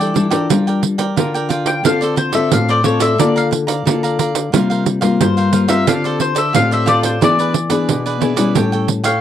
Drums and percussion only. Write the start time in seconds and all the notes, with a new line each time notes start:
0.01 pandeiro
0.16 pandeiro
0.31 pandeiro
0.50 pandeiro
0.68 pandeiro
0.83 pandeiro
0.99 pandeiro
1.17 pandeiro
1.35 pandeiro
1.50 pandeiro
1.66 pandeiro
1.85 pandeiro
2.02 pandeiro
2.17 pandeiro
2.33 pandeiro
2.52 pandeiro
2.69 pandeiro
2.84 pandeiro
3.00 pandeiro
3.19 pandeiro
3.37 pandeiro
3.52 pandeiro
3.68 pandeiro
3.87 pandeiro
4.04 pandeiro
4.19 pandeiro
4.35 pandeiro
4.54 pandeiro
4.71 pandeiro
4.86 pandeiro
5.02 pandeiro
5.21 pandeiro
5.38 pandeiro
5.53 pandeiro
5.69 pandeiro
5.87 pandeiro
6.05 pandeiro
6.20 pandeiro
6.36 pandeiro
6.55 pandeiro
6.72 pandeiro
6.87 pandeiro
7.03 pandeiro
7.22 pandeiro
7.39 pandeiro
7.54 pandeiro
7.70 pandeiro
7.89 pandeiro
8.06 pandeiro
8.22 pandeiro
8.37 pandeiro
8.55 pandeiro
8.73 pandeiro
8.88 pandeiro
9.04 pandeiro